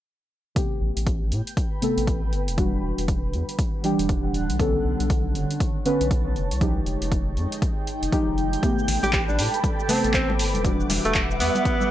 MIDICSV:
0, 0, Header, 1, 8, 480
1, 0, Start_track
1, 0, Tempo, 504202
1, 535, Time_signature, 4, 2, 24, 8
1, 11337, End_track
2, 0, Start_track
2, 0, Title_t, "String machine"
2, 0, Program_c, 0, 50
2, 8216, Note_on_c, 0, 71, 82
2, 8216, Note_on_c, 0, 86, 85
2, 11337, Note_off_c, 0, 71, 0
2, 11337, Note_off_c, 0, 86, 0
2, 11337, End_track
3, 0, Start_track
3, 0, Title_t, "String machine"
3, 0, Program_c, 1, 50
3, 8215, Note_on_c, 1, 69, 80
3, 8215, Note_on_c, 1, 79, 76
3, 8215, Note_on_c, 1, 81, 91
3, 8215, Note_on_c, 1, 83, 70
3, 10116, Note_off_c, 1, 69, 0
3, 10116, Note_off_c, 1, 79, 0
3, 10116, Note_off_c, 1, 81, 0
3, 10116, Note_off_c, 1, 83, 0
3, 10134, Note_on_c, 1, 55, 79
3, 10135, Note_on_c, 1, 76, 74
3, 10135, Note_on_c, 1, 78, 76
3, 11337, Note_off_c, 1, 55, 0
3, 11337, Note_off_c, 1, 76, 0
3, 11337, Note_off_c, 1, 78, 0
3, 11337, End_track
4, 0, Start_track
4, 0, Title_t, "Ambient pad"
4, 0, Program_c, 2, 92
4, 651, Note_on_c, 2, 79, 82
4, 767, Note_on_c, 2, 71, 76
4, 2455, Note_on_c, 2, 50, 79
4, 2456, Note_off_c, 2, 79, 0
4, 2602, Note_on_c, 2, 55, 80
4, 3063, Note_on_c, 2, 78, 67
4, 3235, Note_off_c, 2, 71, 0
4, 4375, Note_off_c, 2, 55, 0
4, 4601, Note_on_c, 2, 73, 88
4, 5058, Note_off_c, 2, 78, 0
4, 6055, Note_off_c, 2, 50, 0
4, 6055, Note_on_c, 2, 63, 71
4, 6056, Note_off_c, 2, 73, 0
4, 6181, Note_on_c, 2, 56, 82
4, 6209, Note_on_c, 2, 79, 82
4, 8215, Note_off_c, 2, 56, 0
4, 8215, Note_off_c, 2, 63, 0
4, 10135, Note_on_c, 2, 50, 82
4, 10136, Note_off_c, 2, 79, 0
4, 10374, Note_on_c, 2, 55, 81
4, 10689, Note_on_c, 2, 78, 87
4, 11337, Note_off_c, 2, 50, 0
4, 11337, Note_off_c, 2, 55, 0
4, 11337, Note_off_c, 2, 78, 0
4, 11337, End_track
5, 0, Start_track
5, 0, Title_t, "Alto saxophone"
5, 0, Program_c, 3, 65
5, 8600, Note_on_c, 3, 67, 88
5, 8661, Note_off_c, 3, 67, 0
5, 8694, Note_on_c, 3, 67, 70
5, 8788, Note_off_c, 3, 67, 0
5, 8839, Note_on_c, 3, 62, 82
5, 8974, Note_off_c, 3, 62, 0
5, 9414, Note_on_c, 3, 60, 87
5, 9532, Note_off_c, 3, 60, 0
5, 9654, Note_on_c, 3, 60, 89
5, 9826, Note_off_c, 3, 60, 0
5, 10521, Note_on_c, 3, 57, 89
5, 10655, Note_off_c, 3, 57, 0
5, 10855, Note_on_c, 3, 59, 91
5, 11337, Note_off_c, 3, 59, 0
5, 11337, End_track
6, 0, Start_track
6, 0, Title_t, "Synth stab"
6, 0, Program_c, 4, 62
6, 525, Note_on_c, 4, 48, 68
6, 532, Note_on_c, 4, 57, 65
6, 538, Note_on_c, 4, 59, 64
6, 545, Note_on_c, 4, 67, 80
6, 1708, Note_off_c, 4, 48, 0
6, 1711, Note_off_c, 4, 57, 0
6, 1714, Note_off_c, 4, 59, 0
6, 1718, Note_off_c, 4, 67, 0
6, 1725, Note_on_c, 4, 48, 86
6, 1731, Note_on_c, 4, 57, 78
6, 1738, Note_on_c, 4, 59, 85
6, 1745, Note_on_c, 4, 69, 94
6, 2428, Note_off_c, 4, 48, 0
6, 2431, Note_off_c, 4, 57, 0
6, 2434, Note_off_c, 4, 59, 0
6, 2438, Note_off_c, 4, 69, 0
6, 2445, Note_on_c, 4, 52, 72
6, 2451, Note_on_c, 4, 55, 67
6, 2458, Note_on_c, 4, 62, 68
6, 2465, Note_on_c, 4, 66, 80
6, 3628, Note_off_c, 4, 52, 0
6, 3631, Note_off_c, 4, 55, 0
6, 3634, Note_off_c, 4, 62, 0
6, 3638, Note_off_c, 4, 66, 0
6, 3645, Note_on_c, 4, 52, 89
6, 3652, Note_on_c, 4, 55, 85
6, 3658, Note_on_c, 4, 62, 85
6, 3665, Note_on_c, 4, 67, 100
6, 4348, Note_off_c, 4, 52, 0
6, 4351, Note_off_c, 4, 55, 0
6, 4354, Note_off_c, 4, 62, 0
6, 4358, Note_off_c, 4, 67, 0
6, 4366, Note_on_c, 4, 50, 73
6, 4372, Note_on_c, 4, 59, 65
6, 4379, Note_on_c, 4, 61, 65
6, 4385, Note_on_c, 4, 69, 78
6, 5548, Note_off_c, 4, 50, 0
6, 5551, Note_off_c, 4, 59, 0
6, 5555, Note_off_c, 4, 61, 0
6, 5558, Note_off_c, 4, 69, 0
6, 5570, Note_on_c, 4, 50, 88
6, 5573, Note_on_c, 4, 59, 84
6, 5577, Note_on_c, 4, 61, 85
6, 5580, Note_on_c, 4, 71, 97
6, 6041, Note_off_c, 4, 50, 0
6, 6043, Note_off_c, 4, 59, 0
6, 6045, Note_off_c, 4, 61, 0
6, 6047, Note_off_c, 4, 71, 0
6, 6285, Note_on_c, 4, 53, 72
6, 6292, Note_on_c, 4, 56, 66
6, 6298, Note_on_c, 4, 63, 67
6, 6305, Note_on_c, 4, 67, 80
6, 7468, Note_off_c, 4, 53, 0
6, 7471, Note_off_c, 4, 56, 0
6, 7474, Note_off_c, 4, 63, 0
6, 7478, Note_off_c, 4, 67, 0
6, 7730, Note_on_c, 4, 53, 88
6, 7733, Note_on_c, 4, 56, 79
6, 7736, Note_on_c, 4, 63, 80
6, 7739, Note_on_c, 4, 67, 96
6, 8190, Note_off_c, 4, 53, 0
6, 8192, Note_off_c, 4, 56, 0
6, 8193, Note_off_c, 4, 63, 0
6, 8195, Note_off_c, 4, 67, 0
6, 8205, Note_on_c, 4, 48, 73
6, 8212, Note_on_c, 4, 57, 68
6, 8218, Note_on_c, 4, 59, 67
6, 8225, Note_on_c, 4, 67, 75
6, 9388, Note_off_c, 4, 48, 0
6, 9391, Note_off_c, 4, 57, 0
6, 9394, Note_off_c, 4, 59, 0
6, 9398, Note_off_c, 4, 67, 0
6, 9405, Note_on_c, 4, 48, 91
6, 9412, Note_on_c, 4, 57, 85
6, 9418, Note_on_c, 4, 59, 83
6, 9425, Note_on_c, 4, 69, 99
6, 10108, Note_off_c, 4, 48, 0
6, 10111, Note_off_c, 4, 57, 0
6, 10114, Note_off_c, 4, 59, 0
6, 10118, Note_off_c, 4, 69, 0
6, 10125, Note_on_c, 4, 52, 72
6, 10132, Note_on_c, 4, 55, 68
6, 10138, Note_on_c, 4, 62, 66
6, 10145, Note_on_c, 4, 66, 81
6, 11308, Note_off_c, 4, 52, 0
6, 11311, Note_off_c, 4, 55, 0
6, 11314, Note_off_c, 4, 62, 0
6, 11318, Note_off_c, 4, 66, 0
6, 11337, End_track
7, 0, Start_track
7, 0, Title_t, "Analog synth bass"
7, 0, Program_c, 5, 38
7, 774, Note_on_c, 5, 33, 99
7, 869, Note_off_c, 5, 33, 0
7, 921, Note_on_c, 5, 33, 94
7, 1255, Note_on_c, 5, 45, 80
7, 1269, Note_off_c, 5, 33, 0
7, 1349, Note_off_c, 5, 45, 0
7, 1881, Note_on_c, 5, 33, 77
7, 2215, Note_on_c, 5, 31, 80
7, 2229, Note_off_c, 5, 33, 0
7, 2361, Note_on_c, 5, 28, 93
7, 2375, Note_off_c, 5, 31, 0
7, 2642, Note_off_c, 5, 28, 0
7, 2695, Note_on_c, 5, 28, 99
7, 2789, Note_off_c, 5, 28, 0
7, 2841, Note_on_c, 5, 28, 96
7, 3175, Note_on_c, 5, 40, 76
7, 3190, Note_off_c, 5, 28, 0
7, 3270, Note_off_c, 5, 40, 0
7, 3802, Note_on_c, 5, 28, 82
7, 4135, Note_on_c, 5, 26, 80
7, 4149, Note_off_c, 5, 28, 0
7, 4281, Note_on_c, 5, 35, 93
7, 4295, Note_off_c, 5, 26, 0
7, 4562, Note_off_c, 5, 35, 0
7, 4615, Note_on_c, 5, 35, 98
7, 4709, Note_off_c, 5, 35, 0
7, 4762, Note_on_c, 5, 35, 99
7, 5095, Note_on_c, 5, 30, 78
7, 5109, Note_off_c, 5, 35, 0
7, 5189, Note_off_c, 5, 30, 0
7, 5721, Note_on_c, 5, 35, 80
7, 6055, Note_on_c, 5, 29, 82
7, 6069, Note_off_c, 5, 35, 0
7, 6201, Note_on_c, 5, 36, 91
7, 6216, Note_off_c, 5, 29, 0
7, 6482, Note_off_c, 5, 36, 0
7, 6535, Note_on_c, 5, 29, 101
7, 6629, Note_off_c, 5, 29, 0
7, 6681, Note_on_c, 5, 29, 95
7, 7015, Note_on_c, 5, 41, 80
7, 7029, Note_off_c, 5, 29, 0
7, 7109, Note_off_c, 5, 41, 0
7, 7641, Note_on_c, 5, 29, 83
7, 7702, Note_off_c, 5, 29, 0
7, 7881, Note_on_c, 5, 29, 86
7, 8162, Note_off_c, 5, 29, 0
7, 8455, Note_on_c, 5, 33, 98
7, 8550, Note_off_c, 5, 33, 0
7, 8601, Note_on_c, 5, 33, 98
7, 8936, Note_on_c, 5, 45, 75
7, 8950, Note_off_c, 5, 33, 0
7, 9030, Note_off_c, 5, 45, 0
7, 9561, Note_on_c, 5, 33, 77
7, 9895, Note_on_c, 5, 31, 81
7, 9909, Note_off_c, 5, 33, 0
7, 10041, Note_on_c, 5, 28, 91
7, 10055, Note_off_c, 5, 31, 0
7, 10322, Note_off_c, 5, 28, 0
7, 10375, Note_on_c, 5, 28, 100
7, 10469, Note_off_c, 5, 28, 0
7, 10522, Note_on_c, 5, 28, 96
7, 10855, Note_on_c, 5, 40, 77
7, 10869, Note_off_c, 5, 28, 0
7, 10949, Note_off_c, 5, 40, 0
7, 11337, End_track
8, 0, Start_track
8, 0, Title_t, "Drums"
8, 535, Note_on_c, 9, 36, 108
8, 535, Note_on_c, 9, 42, 61
8, 630, Note_off_c, 9, 36, 0
8, 630, Note_off_c, 9, 42, 0
8, 921, Note_on_c, 9, 42, 52
8, 1015, Note_off_c, 9, 42, 0
8, 1015, Note_on_c, 9, 36, 100
8, 1015, Note_on_c, 9, 42, 65
8, 1110, Note_off_c, 9, 36, 0
8, 1110, Note_off_c, 9, 42, 0
8, 1255, Note_on_c, 9, 42, 38
8, 1350, Note_off_c, 9, 42, 0
8, 1401, Note_on_c, 9, 42, 54
8, 1495, Note_off_c, 9, 42, 0
8, 1495, Note_on_c, 9, 36, 113
8, 1495, Note_on_c, 9, 42, 66
8, 1590, Note_off_c, 9, 36, 0
8, 1590, Note_off_c, 9, 42, 0
8, 1735, Note_on_c, 9, 42, 63
8, 1830, Note_off_c, 9, 42, 0
8, 1882, Note_on_c, 9, 42, 51
8, 1975, Note_off_c, 9, 42, 0
8, 1975, Note_on_c, 9, 36, 98
8, 1975, Note_on_c, 9, 42, 65
8, 2070, Note_off_c, 9, 36, 0
8, 2070, Note_off_c, 9, 42, 0
8, 2215, Note_on_c, 9, 42, 36
8, 2311, Note_off_c, 9, 42, 0
8, 2361, Note_on_c, 9, 42, 51
8, 2454, Note_off_c, 9, 42, 0
8, 2454, Note_on_c, 9, 42, 61
8, 2455, Note_on_c, 9, 36, 119
8, 2550, Note_off_c, 9, 36, 0
8, 2550, Note_off_c, 9, 42, 0
8, 2841, Note_on_c, 9, 42, 52
8, 2934, Note_off_c, 9, 42, 0
8, 2934, Note_on_c, 9, 42, 64
8, 2935, Note_on_c, 9, 36, 102
8, 3030, Note_off_c, 9, 36, 0
8, 3030, Note_off_c, 9, 42, 0
8, 3175, Note_on_c, 9, 42, 36
8, 3270, Note_off_c, 9, 42, 0
8, 3320, Note_on_c, 9, 42, 52
8, 3414, Note_off_c, 9, 42, 0
8, 3414, Note_on_c, 9, 42, 62
8, 3415, Note_on_c, 9, 36, 115
8, 3509, Note_off_c, 9, 42, 0
8, 3510, Note_off_c, 9, 36, 0
8, 3654, Note_on_c, 9, 42, 59
8, 3750, Note_off_c, 9, 42, 0
8, 3801, Note_on_c, 9, 42, 49
8, 3895, Note_off_c, 9, 42, 0
8, 3895, Note_on_c, 9, 36, 104
8, 3895, Note_on_c, 9, 42, 60
8, 3990, Note_off_c, 9, 36, 0
8, 3990, Note_off_c, 9, 42, 0
8, 4135, Note_on_c, 9, 42, 35
8, 4230, Note_off_c, 9, 42, 0
8, 4281, Note_on_c, 9, 42, 51
8, 4375, Note_off_c, 9, 42, 0
8, 4375, Note_on_c, 9, 36, 113
8, 4375, Note_on_c, 9, 42, 61
8, 4470, Note_off_c, 9, 36, 0
8, 4470, Note_off_c, 9, 42, 0
8, 4761, Note_on_c, 9, 42, 49
8, 4855, Note_off_c, 9, 42, 0
8, 4855, Note_on_c, 9, 36, 104
8, 4855, Note_on_c, 9, 42, 62
8, 4950, Note_off_c, 9, 36, 0
8, 4950, Note_off_c, 9, 42, 0
8, 5095, Note_on_c, 9, 42, 35
8, 5190, Note_off_c, 9, 42, 0
8, 5241, Note_on_c, 9, 42, 50
8, 5335, Note_off_c, 9, 42, 0
8, 5335, Note_on_c, 9, 36, 120
8, 5335, Note_on_c, 9, 42, 58
8, 5430, Note_off_c, 9, 36, 0
8, 5430, Note_off_c, 9, 42, 0
8, 5575, Note_on_c, 9, 42, 62
8, 5670, Note_off_c, 9, 42, 0
8, 5720, Note_on_c, 9, 42, 49
8, 5815, Note_off_c, 9, 42, 0
8, 5815, Note_on_c, 9, 36, 109
8, 5815, Note_on_c, 9, 42, 59
8, 5910, Note_off_c, 9, 36, 0
8, 5910, Note_off_c, 9, 42, 0
8, 6054, Note_on_c, 9, 42, 34
8, 6150, Note_off_c, 9, 42, 0
8, 6201, Note_on_c, 9, 42, 46
8, 6294, Note_off_c, 9, 42, 0
8, 6294, Note_on_c, 9, 42, 57
8, 6295, Note_on_c, 9, 36, 119
8, 6390, Note_off_c, 9, 36, 0
8, 6390, Note_off_c, 9, 42, 0
8, 6535, Note_on_c, 9, 42, 33
8, 6630, Note_off_c, 9, 42, 0
8, 6681, Note_on_c, 9, 42, 50
8, 6775, Note_off_c, 9, 42, 0
8, 6775, Note_on_c, 9, 36, 102
8, 6775, Note_on_c, 9, 42, 61
8, 6870, Note_off_c, 9, 36, 0
8, 6870, Note_off_c, 9, 42, 0
8, 7016, Note_on_c, 9, 42, 36
8, 7111, Note_off_c, 9, 42, 0
8, 7161, Note_on_c, 9, 42, 50
8, 7255, Note_off_c, 9, 42, 0
8, 7255, Note_on_c, 9, 36, 121
8, 7255, Note_on_c, 9, 42, 62
8, 7350, Note_off_c, 9, 36, 0
8, 7350, Note_off_c, 9, 42, 0
8, 7495, Note_on_c, 9, 42, 57
8, 7590, Note_off_c, 9, 42, 0
8, 7642, Note_on_c, 9, 42, 49
8, 7735, Note_on_c, 9, 36, 105
8, 7736, Note_off_c, 9, 42, 0
8, 7736, Note_on_c, 9, 42, 62
8, 7830, Note_off_c, 9, 36, 0
8, 7831, Note_off_c, 9, 42, 0
8, 7976, Note_on_c, 9, 42, 35
8, 8071, Note_off_c, 9, 42, 0
8, 8122, Note_on_c, 9, 42, 48
8, 8215, Note_on_c, 9, 36, 115
8, 8216, Note_off_c, 9, 42, 0
8, 8216, Note_on_c, 9, 42, 59
8, 8217, Note_on_c, 9, 62, 47
8, 8221, Note_on_c, 9, 69, 43
8, 8310, Note_off_c, 9, 36, 0
8, 8311, Note_off_c, 9, 42, 0
8, 8312, Note_off_c, 9, 62, 0
8, 8316, Note_off_c, 9, 69, 0
8, 8367, Note_on_c, 9, 69, 29
8, 8452, Note_on_c, 9, 64, 81
8, 8455, Note_on_c, 9, 46, 100
8, 8460, Note_off_c, 9, 69, 0
8, 8460, Note_on_c, 9, 69, 76
8, 8547, Note_off_c, 9, 64, 0
8, 8551, Note_off_c, 9, 46, 0
8, 8555, Note_off_c, 9, 69, 0
8, 8595, Note_on_c, 9, 62, 74
8, 8602, Note_on_c, 9, 42, 50
8, 8607, Note_on_c, 9, 69, 31
8, 8691, Note_off_c, 9, 62, 0
8, 8691, Note_on_c, 9, 39, 112
8, 8695, Note_on_c, 9, 36, 102
8, 8696, Note_off_c, 9, 42, 0
8, 8696, Note_on_c, 9, 42, 59
8, 8701, Note_off_c, 9, 69, 0
8, 8701, Note_on_c, 9, 69, 42
8, 8787, Note_off_c, 9, 39, 0
8, 8790, Note_off_c, 9, 36, 0
8, 8791, Note_off_c, 9, 42, 0
8, 8796, Note_off_c, 9, 69, 0
8, 8838, Note_on_c, 9, 62, 47
8, 8847, Note_on_c, 9, 69, 29
8, 8933, Note_off_c, 9, 62, 0
8, 8936, Note_on_c, 9, 46, 92
8, 8941, Note_off_c, 9, 69, 0
8, 8941, Note_on_c, 9, 69, 79
8, 9031, Note_off_c, 9, 46, 0
8, 9036, Note_off_c, 9, 69, 0
8, 9082, Note_on_c, 9, 42, 49
8, 9087, Note_on_c, 9, 69, 33
8, 9175, Note_off_c, 9, 42, 0
8, 9175, Note_on_c, 9, 36, 114
8, 9175, Note_on_c, 9, 42, 61
8, 9175, Note_on_c, 9, 62, 62
8, 9180, Note_off_c, 9, 69, 0
8, 9180, Note_on_c, 9, 69, 44
8, 9270, Note_off_c, 9, 36, 0
8, 9270, Note_off_c, 9, 62, 0
8, 9271, Note_off_c, 9, 42, 0
8, 9275, Note_off_c, 9, 69, 0
8, 9326, Note_on_c, 9, 69, 33
8, 9414, Note_on_c, 9, 62, 48
8, 9415, Note_on_c, 9, 46, 106
8, 9419, Note_off_c, 9, 69, 0
8, 9419, Note_on_c, 9, 64, 70
8, 9419, Note_on_c, 9, 69, 80
8, 9510, Note_off_c, 9, 46, 0
8, 9510, Note_off_c, 9, 62, 0
8, 9514, Note_off_c, 9, 64, 0
8, 9515, Note_off_c, 9, 69, 0
8, 9562, Note_on_c, 9, 42, 49
8, 9566, Note_on_c, 9, 69, 33
8, 9651, Note_on_c, 9, 39, 111
8, 9655, Note_off_c, 9, 42, 0
8, 9655, Note_on_c, 9, 36, 100
8, 9655, Note_on_c, 9, 42, 61
8, 9660, Note_off_c, 9, 69, 0
8, 9660, Note_on_c, 9, 69, 46
8, 9746, Note_off_c, 9, 39, 0
8, 9750, Note_off_c, 9, 36, 0
8, 9750, Note_off_c, 9, 42, 0
8, 9755, Note_off_c, 9, 69, 0
8, 9804, Note_on_c, 9, 62, 75
8, 9895, Note_on_c, 9, 46, 90
8, 9899, Note_off_c, 9, 62, 0
8, 9899, Note_on_c, 9, 69, 75
8, 9990, Note_off_c, 9, 46, 0
8, 9994, Note_off_c, 9, 69, 0
8, 10033, Note_on_c, 9, 62, 48
8, 10038, Note_on_c, 9, 63, 64
8, 10041, Note_on_c, 9, 42, 49
8, 10046, Note_on_c, 9, 69, 33
8, 10128, Note_off_c, 9, 62, 0
8, 10133, Note_off_c, 9, 63, 0
8, 10135, Note_off_c, 9, 42, 0
8, 10135, Note_on_c, 9, 36, 109
8, 10135, Note_on_c, 9, 42, 60
8, 10139, Note_off_c, 9, 69, 0
8, 10139, Note_on_c, 9, 69, 46
8, 10230, Note_off_c, 9, 36, 0
8, 10230, Note_off_c, 9, 42, 0
8, 10235, Note_off_c, 9, 69, 0
8, 10286, Note_on_c, 9, 69, 30
8, 10374, Note_on_c, 9, 64, 90
8, 10375, Note_on_c, 9, 46, 100
8, 10377, Note_on_c, 9, 62, 82
8, 10379, Note_off_c, 9, 69, 0
8, 10379, Note_on_c, 9, 69, 82
8, 10469, Note_off_c, 9, 64, 0
8, 10470, Note_off_c, 9, 46, 0
8, 10472, Note_off_c, 9, 62, 0
8, 10474, Note_off_c, 9, 69, 0
8, 10521, Note_on_c, 9, 42, 50
8, 10525, Note_on_c, 9, 69, 34
8, 10610, Note_on_c, 9, 39, 114
8, 10611, Note_on_c, 9, 62, 54
8, 10615, Note_off_c, 9, 42, 0
8, 10615, Note_on_c, 9, 36, 94
8, 10615, Note_on_c, 9, 42, 61
8, 10619, Note_off_c, 9, 69, 0
8, 10619, Note_on_c, 9, 69, 48
8, 10705, Note_off_c, 9, 39, 0
8, 10707, Note_off_c, 9, 62, 0
8, 10710, Note_off_c, 9, 36, 0
8, 10710, Note_off_c, 9, 42, 0
8, 10714, Note_off_c, 9, 69, 0
8, 10766, Note_on_c, 9, 69, 33
8, 10855, Note_on_c, 9, 46, 89
8, 10859, Note_off_c, 9, 69, 0
8, 10859, Note_on_c, 9, 69, 79
8, 10950, Note_off_c, 9, 46, 0
8, 10955, Note_off_c, 9, 69, 0
8, 10995, Note_on_c, 9, 62, 71
8, 11001, Note_on_c, 9, 42, 51
8, 11006, Note_on_c, 9, 69, 34
8, 11091, Note_off_c, 9, 62, 0
8, 11094, Note_off_c, 9, 42, 0
8, 11094, Note_on_c, 9, 42, 65
8, 11095, Note_on_c, 9, 36, 115
8, 11099, Note_off_c, 9, 69, 0
8, 11099, Note_on_c, 9, 69, 44
8, 11190, Note_off_c, 9, 36, 0
8, 11190, Note_off_c, 9, 42, 0
8, 11194, Note_off_c, 9, 69, 0
8, 11237, Note_on_c, 9, 62, 50
8, 11242, Note_on_c, 9, 63, 59
8, 11245, Note_on_c, 9, 69, 33
8, 11332, Note_off_c, 9, 62, 0
8, 11337, Note_off_c, 9, 63, 0
8, 11337, Note_off_c, 9, 69, 0
8, 11337, End_track
0, 0, End_of_file